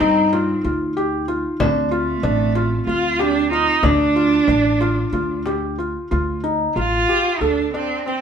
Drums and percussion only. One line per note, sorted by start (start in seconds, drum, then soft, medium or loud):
0.33 frame drum soft
1.60 frame drum medium
2.55 frame drum soft
3.19 frame drum soft
3.83 frame drum medium
4.81 frame drum soft
5.46 frame drum soft